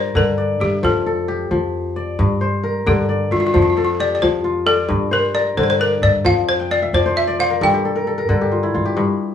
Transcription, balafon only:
0.00 0.17 C5 medium
0.17 0.63 A#4 medium
0.61 0.84 G4 medium
0.85 1.70 A4 medium
2.87 3.33 G4 medium
3.32 3.39 F4 medium
3.40 3.45 F4 medium
3.47 3.53 F4 medium
3.54 3.61 F4 medium
3.62 3.69 F4 medium
3.70 3.76 F4 medium
3.77 3.83 F4 soft
3.85 3.92 F4 medium
4.00 4.14 D5 medium
4.15 4.22 D5 medium
4.22 4.64 C5 medium
4.67 5.13 A4 loud
5.13 5.36 A#4 medium
5.35 5.58 D5 medium
5.57 5.62 C5 medium
5.63 5.69 C5 medium
5.70 5.80 C5 medium
5.81 5.91 A#4 medium
6.03 6.26 D5 medium
6.26 6.49 F5 medium
6.49 6.71 C5 medium
6.71 6.94 D5 medium
6.94 7.17 C5 medium
7.17 7.40 E5 medium
7.40 7.63 F5 medium
7.63 8.49 G5 medium

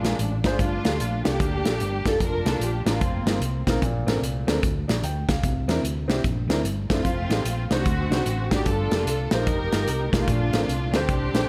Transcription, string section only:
0.00 0.41 G#3 medium
0.00 0.41 D4 medium
0.44 1.21 A3 medium
0.44 1.21 D4 medium
0.44 1.22 F4 medium
1.26 2.02 A#3 medium
1.26 2.02 D4 medium
1.26 2.06 G4 medium
2.07 2.21 A4 medium
2.22 2.98 D4 medium
2.22 2.86 F4 medium
2.22 2.45 A#4 loud
2.47 2.61 A4 medium
2.62 2.87 G4 medium
2.87 3.64 A#3 medium
2.87 3.64 C4 medium
2.87 3.24 F4 medium
6.91 7.67 A3 medium
6.91 7.68 C4 medium
6.91 7.67 F4 medium
7.71 8.48 A3 medium
7.71 8.48 C4 medium
7.71 8.48 F#4 medium
8.54 8.67 G4 medium
8.67 9.43 D4 medium
8.67 9.43 F4 medium
8.67 9.07 A4 medium
9.08 9.31 A4 medium
9.33 10.09 D#4 medium
9.33 10.10 G4 medium
9.33 10.10 A#4 medium
10.15 10.91 A3 medium
10.15 10.90 D4 medium
10.15 10.95 F4 medium
10.95 11.49 C4 medium
10.95 11.49 D4 medium
10.95 11.49 G4 medium

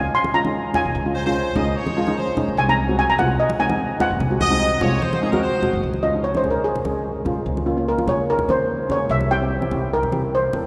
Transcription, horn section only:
1.15 1.24 C5 loud
1.25 1.53 C5 medium
1.55 1.68 D#5 loud
1.69 1.76 D#5 medium
1.76 2.17 C#5 loud
2.17 2.46 C5 medium
4.41 4.79 D#5 loud
4.81 5.02 C#5 loud
5.02 5.22 C5 loud
5.22 5.32 G#4 medium
5.32 5.41 A#4 medium
5.42 5.80 C5 medium

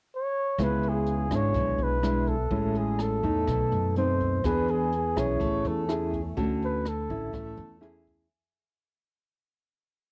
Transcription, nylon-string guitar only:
0.58 1.53 C#3 soft
0.58 1.27 G#3 soft
0.58 1.28 B3 medium
0.58 1.27 E4 medium
1.31 1.99 G#3 medium
1.31 2.00 D4 medium
1.31 2.00 E4 medium
1.56 2.49 B2 medium
2.02 2.34 G#3 soft
2.02 2.34 D4 medium
2.02 2.34 E4 medium
2.51 3.45 A2 medium
2.51 3.20 G#3 medium
2.51 3.20 C#4 medium
2.51 3.20 E4 medium
3.23 3.92 A3 medium
3.23 3.92 D#4 medium
3.48 4.42 B2 soft
3.97 4.41 A3 soft
3.97 4.41 C4 medium
3.97 4.41 D#4 medium
4.44 5.38 E3 medium
4.44 4.92 B3 medium
4.44 4.93 D4 medium
4.44 4.93 G#4 medium
5.16 5.85 C#4 medium
5.16 5.85 E4 medium
5.16 5.85 G#4 medium
5.40 6.34 A3 medium
5.88 6.20 C#4 medium
5.88 6.20 E4 medium
5.88 6.20 G#4 medium
6.37 7.31 D3 medium
6.37 6.85 C#4 medium
6.37 6.85 F#4 medium
6.37 6.85 A4 medium
7.10 7.78 C#4 soft
7.10 7.79 E4 medium
7.33 8.27 A3 medium
7.81 8.26 C#4 medium
7.81 8.26 E4 medium
7.81 8.26 G#4 medium

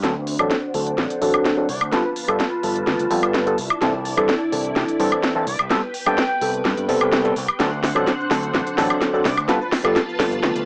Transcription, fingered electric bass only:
0.03 0.36 D2 medium
0.39 0.49 A1 medium
0.74 0.94 D2 medium
0.98 1.08 A1 medium
1.22 1.32 A1 medium
1.69 1.79 C2 loud
1.81 1.91 D2 medium
2.29 2.38 G1 loud
2.64 2.83 G1 medium
2.87 2.97 D2 medium
2.99 3.09 D2 medium
3.11 3.21 F2 medium
3.23 3.55 G1 medium
3.58 3.68 C2 medium
3.82 4.14 C2 loud
4.17 4.27 G2 loud
4.53 4.72 C2 medium
4.76 4.86 C3 medium
4.88 muted fingered electric bass stroke soft
5.00 5.10 G2 loud
5.47 5.57 C2 loud
5.59 5.69 C2 medium
6.07 6.16 G2 loud
6.41 6.61 C2 medium
6.65 6.75 G2 medium
6.78 6.87 G2 medium
6.89 6.99 C2 medium
7.01 7.33 C2 medium
7.36 7.46 C2 loud
7.60 7.92 D2 loud
7.96 8.05 A1 medium
8.31 8.50 D2 medium
8.54 8.64 A1 medium
8.66 muted fingered electric bass stroke soft
8.78 8.88 A1 medium
9.25 9.35 C2 loud
9.37 9.47 D2 medium
9.84 9.94 G1 loud
10.20 10.39 G1 medium
10.43 10.53 D2 medium
10.55 10.65 D2 medium

